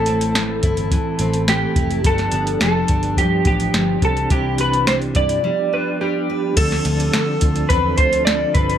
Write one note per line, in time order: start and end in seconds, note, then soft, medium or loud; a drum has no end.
0.00 0.59 A1 loud
0.00 2.04 A2 medium
0.00 2.00 E3 medium
0.00 0.36 A3 medium
0.00 2.00 A3 medium
0.00 2.01 C4 medium
0.00 0.62 E4 medium
0.00 1.49 A4 medium
0.00 2.02 A4 medium
0.06 1.19 C4 medium
0.06 closed hi-hat medium
0.21 closed hi-hat soft
0.35 0.91 E3 medium
0.35 snare loud
0.35 closed hi-hat medium
0.63 0.97 G1 medium
0.63 1.75 E4 medium
0.63 kick medium
0.63 closed hi-hat medium
0.77 closed hi-hat soft
0.91 1.47 E3 medium
0.91 kick medium
0.91 closed hi-hat medium
1.19 1.65 A1 medium
1.19 2.10 C4 medium
1.19 closed hi-hat medium
1.34 closed hi-hat soft
1.48 2.10 E3 medium
1.48 2.01 G4 medium
1.48 snare medium
1.48 closed hi-hat medium
1.76 2.05 F1 medium
1.76 2.05 E4 medium
1.76 kick medium
1.76 closed hi-hat medium
1.91 closed hi-hat soft
2.02 2.27 G1 medium
2.02 4.02 G2 medium
2.02 3.98 F3 medium
2.02 3.98 B3 medium
2.02 2.89 D4 medium
2.02 3.99 D4 medium
2.02 2.61 A4 medium
2.02 kick medium
2.02 closed hi-hat medium
2.07 2.12 F#4 medium
2.14 4.03 G4 medium
2.18 snare soft
2.18 closed hi-hat soft
2.32 2.55 G1 loud
2.32 3.45 B3 medium
2.32 closed hi-hat medium
2.47 closed hi-hat soft
2.61 2.84 F1 medium
2.61 3.16 F3 medium
2.61 3.18 A4 medium
2.61 snare loud
2.61 closed hi-hat medium
2.88 3.19 G1 medium
2.88 4.31 D4 medium
2.88 kick medium
2.88 closed hi-hat medium
3.03 closed hi-hat soft
3.17 3.40 G2 medium
3.17 3.73 F3 medium
3.17 3.46 G4 medium
3.17 kick medium
3.17 closed hi-hat medium
3.45 3.68 A1 medium
3.45 4.08 B3 medium
3.45 4.04 G4 medium
3.45 kick medium
3.45 closed hi-hat medium
3.60 closed hi-hat soft
3.74 3.97 G1 medium
3.74 4.08 F3 medium
3.74 snare loud
3.74 closed hi-hat medium
4.00 4.25 C2 medium
4.00 4.30 C3 medium
4.00 5.40 E3 medium
4.00 5.41 C4 soft
4.00 5.42 D4 soft
4.00 kick medium
4.00 closed hi-hat medium
4.05 5.43 G4 medium
4.05 4.31 A4 medium
4.17 closed hi-hat soft
4.30 5.12 C2 medium
4.30 5.50 C3 medium
4.30 5.15 E4 medium
4.30 4.57 G4 medium
4.30 kick loud
4.30 closed hi-hat medium
4.58 6.01 D4 medium
4.58 4.87 B4 medium
4.58 closed hi-hat medium
4.73 closed hi-hat soft
4.87 5.43 G3 medium
4.87 4.95 C5 loud
4.87 snare medium
4.87 closed hi-hat medium
5.02 closed hi-hat soft
5.15 5.38 G2 medium
5.15 5.50 E4 medium
5.15 6.25 D5 loud
5.15 kick medium
5.15 closed hi-hat medium
5.29 closed hi-hat soft
5.42 6.53 F3 medium
5.42 6.63 G3 medium
5.42 6.54 B3 soft
5.42 6.55 D4 medium
5.47 6.56 G4 medium
5.73 6.85 F4 soft
5.73 6.01 B4 medium
6.01 7.71 D4 medium
6.01 6.56 G4 medium
6.30 6.57 B4 medium
6.54 6.80 D2 loud
6.54 8.78 D3 medium
6.54 8.78 F3 medium
6.54 8.78 C4 medium
6.54 8.78 D4 medium
6.54 7.74 A4 medium
6.54 7.13 A4 medium
6.54 kick loud
6.54 closed hi-hat medium
6.54 crash medium
6.59 8.78 A4 medium
6.71 snare soft
6.71 closed hi-hat soft
6.85 7.08 D2 loud
6.85 7.42 F4 medium
6.85 closed hi-hat medium
7.00 closed hi-hat soft
7.13 7.36 D3 medium
7.13 8.26 A4 medium
7.13 snare loud
7.13 closed hi-hat loud
7.41 7.65 D2 medium
7.41 7.98 F4 soft
7.41 kick medium
7.41 closed hi-hat medium
7.56 closed hi-hat medium
7.69 7.93 E2 loud
7.69 8.55 C4 medium
7.69 7.97 B4 medium
7.69 kick medium
7.69 closed hi-hat medium
7.97 8.44 D2 medium
7.97 8.78 F4 medium
7.97 8.24 C5 medium
7.97 kick medium
7.97 closed hi-hat medium
8.13 closed hi-hat medium
8.25 8.78 A4 medium
8.25 8.52 D5 loud
8.25 snare loud
8.25 closed hi-hat medium
8.54 8.78 G1 medium
8.54 8.78 C4 medium
8.54 8.78 B4 loud
8.54 kick loud
8.54 closed hi-hat medium
8.70 closed hi-hat soft